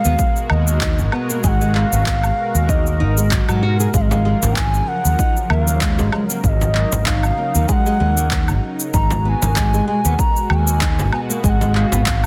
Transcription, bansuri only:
0.00 0.51 F5 loud
0.50 1.13 D#5 medium
1.43 1.49 G#5 loud
1.48 1.76 F#5 loud
1.75 2.71 F5 loud
2.69 3.63 D#5 medium
3.95 4.03 F5 loud
4.02 4.12 D#5 medium
4.10 4.58 F5 loud
4.56 4.89 G#5 loud
4.88 5.52 F#5 loud
5.50 5.62 E5 medium
5.62 6.13 F5 medium
6.44 6.49 F5 medium
6.48 7.08 D#5 medium
7.06 7.70 F5 loud
7.68 7.73 G#5 loud
7.72 8.62 F#5 loud
8.94 9.25 A#5 loud
9.25 9.87 G#5 loud
9.25 9.30 A#5 loud
9.88 10.21 G#5 loud
10.19 10.52 A#5 loud
10.50 11.13 G#5 loud
11.13 11.20 G#5 medium
11.45 11.50 G#5 medium
11.49 11.77 F#5 loud
11.75 12.26 F5 loud

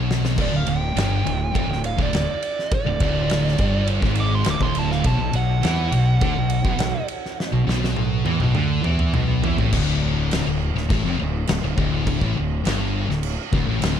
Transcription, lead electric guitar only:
0.41 0.56 D5 loud
0.56 0.69 F5 medium
0.69 1.81 G5 loud
1.86 1.99 F5 medium
2.03 2.29 D5 medium
2.31 2.72 D5 medium
2.74 3.86 D5 loud
4.20 4.35 D6 loud
4.35 4.47 C6 loud
4.50 4.62 D6 medium
4.63 4.79 C6 loud
4.79 4.91 A5 medium
4.92 5.05 F5 loud
5.06 5.34 A5 loud
5.36 7.06 F#5 loud

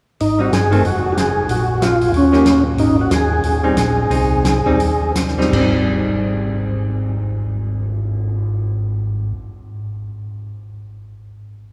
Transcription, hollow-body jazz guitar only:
0.39 0.50 G3 soft
0.39 0.51 C4 soft
0.39 0.51 D#4 medium
0.71 0.82 D#3 medium
0.71 0.83 A3 medium
0.71 0.83 C4 medium
2.32 2.44 D#3 soft
2.32 2.44 A#3 medium
2.32 2.44 C#4 medium
2.32 2.44 G4 medium
3.63 3.75 G3 medium
3.63 3.75 C4 medium
3.63 3.75 D#4 medium
4.10 4.61 C4 soft
4.10 4.62 D#4 medium
4.66 4.78 G3 medium
4.66 4.78 C4 medium
4.66 4.78 D#4 medium
5.38 5.47 G3 medium
5.38 5.54 C4 medium
5.38 5.60 D#4 medium
5.49 9.78 G3 medium
5.55 9.84 C4 medium
5.61 9.90 D#4 medium

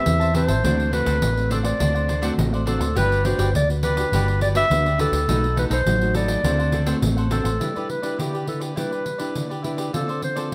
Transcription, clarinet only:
0.00 0.33 E5 loud
0.36 0.90 C5 medium
0.94 1.47 B4 medium
1.52 1.58 A4 medium
1.65 2.36 D5 medium
2.67 2.94 A4 medium
2.97 3.27 B4 loud
3.25 3.54 C5 medium
3.56 3.69 D5 medium
3.84 4.37 B4 medium
4.42 4.49 D5 loud
4.57 4.97 E5 loud
5.01 5.54 A4 medium
5.59 5.65 B4 medium
5.73 6.13 C5 loud
6.16 6.99 D5 medium
7.32 7.92 A4 medium
7.90 8.19 B4 medium
8.19 8.46 G4 medium
8.48 8.61 A4 medium
8.78 9.61 B4 medium
9.95 10.22 A4 medium
10.24 10.37 C5 medium

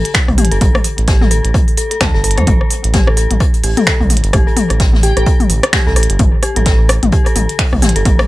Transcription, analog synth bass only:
0.28 0.40 C2 loud
0.38 0.49 A1 loud
0.52 0.59 G1 loud
0.61 0.72 A1 medium
0.98 1.41 A1 medium
1.45 1.53 A1 medium
2.01 2.12 D2 medium
2.14 2.39 G1 medium
2.38 2.46 E2 medium
2.47 2.59 A1 loud
2.84 3.27 A1 medium
3.31 3.39 A1 medium
3.64 3.75 A1 medium
4.01 4.12 C2 loud
4.10 4.21 A1 loud
4.24 4.32 G1 loud
4.33 4.45 A1 loud
4.70 5.13 A1 medium
5.17 5.25 A1 medium
5.50 5.61 A1 medium
5.87 5.98 C2 loud
5.96 6.07 A1 loud
6.10 6.18 G1 loud
6.20 6.31 A1 medium
6.56 6.99 A1 medium
7.03 7.11 A1 medium
7.36 7.47 A1 medium
7.73 7.84 C2 loud
7.82 7.93 A1 loud
7.96 8.04 G1 loud
8.06 8.17 A1 loud

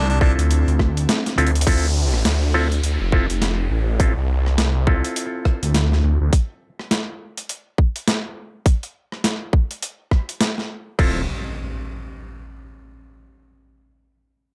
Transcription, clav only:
0.21 1.35 C4 medium
0.21 1.35 E4 medium
0.21 1.35 F4 medium
0.21 1.35 A4 medium
1.38 1.51 C4 medium
1.38 1.51 E4 medium
1.38 1.51 F4 medium
1.38 1.51 A4 medium
1.67 1.87 C4 medium
1.67 1.87 E4 medium
1.67 1.87 F4 medium
1.67 1.87 A4 loud
2.54 2.68 C4 medium
2.54 2.68 E4 medium
2.54 2.68 F4 medium
2.54 2.68 A4 loud
3.13 3.26 C4 loud
3.13 3.26 E4 medium
3.13 3.26 F4 medium
3.13 3.26 A4 loud
4.00 4.13 C4 medium
4.00 4.13 E4 medium
4.00 4.13 F4 medium
4.00 4.13 A4 medium
4.87 6.30 C4 medium
4.87 6.30 E4 medium
4.87 6.30 F4 medium
4.87 6.30 A4 medium
10.99 11.21 C4 medium
10.99 11.21 E4 medium
10.99 11.22 F4 medium
10.99 11.21 A4 medium

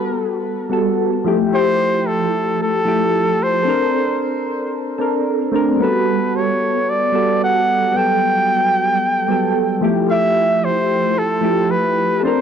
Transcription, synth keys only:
0.00 0.69 G3 medium
0.00 0.70 B3 medium
0.00 0.72 F#4 medium
0.00 0.73 A4 medium
0.69 1.21 G3 medium
0.69 1.21 B3 medium
0.69 1.22 F#4 medium
0.69 1.23 A4 medium
1.24 1.47 F3 medium
1.24 1.49 A3 medium
1.24 1.49 E4 medium
1.24 1.50 G4 loud
1.48 2.81 F3 medium
1.48 2.82 A3 medium
1.53 2.83 E4 medium
1.53 2.84 G4 loud
2.85 2.94 F3 medium
2.85 2.95 A3 medium
2.85 2.95 E4 medium
2.85 2.96 G4 loud
3.63 4.96 C4 medium
3.63 4.95 A4 medium
3.67 4.97 D4 medium
3.67 4.99 A#4 medium
4.98 5.50 C4 medium
4.98 5.50 D4 medium
4.98 5.50 A4 medium
4.98 5.51 A#4 medium
5.52 5.76 A3 medium
5.52 5.77 C4 medium
5.52 5.77 D4 medium
5.52 5.78 A#4 loud
5.77 7.09 G3 medium
5.77 7.10 B3 medium
5.82 7.12 F#4 medium
5.82 7.13 A4 medium
7.12 7.22 G3 medium
7.12 7.23 B3 medium
7.12 7.23 F#4 medium
7.12 7.24 A4 medium
7.92 9.24 G3 medium
7.92 9.25 B3 medium
7.96 9.26 F#3 medium
7.96 9.27 A4 medium
9.28 9.80 F#3 medium
9.28 9.79 G3 medium
9.28 9.79 B3 medium
9.28 9.81 A4 medium
9.81 10.05 F3 medium
9.81 10.06 A3 medium
9.81 10.06 E4 medium
9.81 10.07 G4 loud
10.07 11.39 F3 medium
10.07 11.39 A3 medium
10.11 11.41 E4 medium
10.11 11.42 G4 medium
11.41 11.51 F3 medium
11.41 11.51 A3 medium
11.41 11.52 E4 medium
11.41 11.53 G4 medium
12.20 12.41 C4 medium
12.20 12.41 A4 medium
12.25 12.41 D4 medium
12.25 12.41 A#4 medium

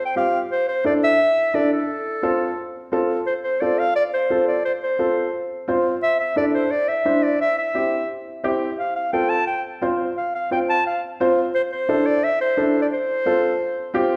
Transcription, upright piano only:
0.16 0.40 C4 medium
0.16 0.40 F4 medium
0.16 0.41 G4 medium
0.85 1.09 D4 medium
0.85 1.09 E4 medium
0.85 1.09 A4 medium
1.54 1.78 D4 medium
1.54 1.79 E4 medium
1.54 1.79 A4 medium
2.23 2.47 C4 medium
2.23 2.47 F4 medium
2.23 2.47 A4 medium
2.92 3.16 C4 medium
2.92 3.16 F4 medium
2.92 3.17 A4 medium
3.62 3.86 C4 medium
3.62 3.86 F4 medium
3.62 3.86 A4 medium
4.30 4.54 C4 medium
4.30 4.54 F4 medium
4.30 4.55 A4 medium
4.99 5.23 C4 medium
4.99 5.23 F4 medium
4.99 5.24 A4 medium
5.68 5.92 C4 medium
5.68 5.92 F4 medium
5.68 5.93 C5 medium
6.36 6.61 D4 medium
6.36 6.61 E4 medium
6.36 6.61 A4 medium
7.05 7.30 D4 medium
7.05 7.30 E4 medium
7.05 7.30 C5 medium
7.74 7.99 C4 medium
7.74 7.99 E4 medium
7.74 7.99 G4 medium
8.44 8.68 C4 medium
8.44 8.68 E4 medium
8.44 8.68 G4 medium
9.13 9.37 C4 medium
9.13 9.37 F4 medium
9.13 9.37 A4 medium
9.82 10.06 C4 medium
9.82 10.06 F4 medium
9.82 10.06 C5 medium
10.51 10.75 C4 medium
10.51 10.75 F4 medium
10.51 10.75 C5 medium
11.20 11.44 C4 medium
11.20 11.44 F4 medium
11.20 11.44 C5 medium
11.89 12.13 D4 medium
11.89 12.13 E4 medium
11.89 12.13 A4 medium
12.57 12.81 D4 medium
12.57 12.82 E4 medium
12.57 12.82 A4 medium
13.26 13.50 C4 medium
13.26 13.50 F4 medium
13.26 13.50 A4 medium
13.94 14.16 C4 medium
13.94 14.16 F4 medium
13.94 14.16 G4 loud

